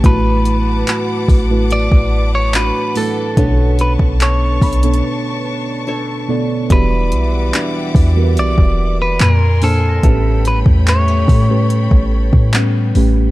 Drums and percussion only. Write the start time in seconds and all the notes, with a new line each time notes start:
0.04 kick, closed hi-hat
0.45 closed hi-hat
0.87 clap, closed hi-hat
1.28 kick, open hi-hat
1.70 closed hi-hat
1.92 kick
2.54 clap, closed hi-hat
2.96 open hi-hat
3.37 kick, closed hi-hat
3.79 closed hi-hat
3.99 kick
4.20 clap, closed hi-hat
4.62 kick, closed hi-hat, open hi-hat
4.73 closed hi-hat
4.83 closed hi-hat
4.93 closed hi-hat
6.70 kick, closed hi-hat
7.12 closed hi-hat
7.54 clap, closed hi-hat
7.95 kick, open hi-hat
8.37 closed hi-hat
8.58 kick
9.20 clap, closed hi-hat
9.62 open hi-hat
10.03 kick, closed hi-hat
10.45 closed hi-hat
10.66 kick
10.87 clap, closed hi-hat
11.28 kick, open hi-hat
11.70 closed hi-hat
11.91 kick
12.33 kick
12.53 clap, closed hi-hat
12.95 open hi-hat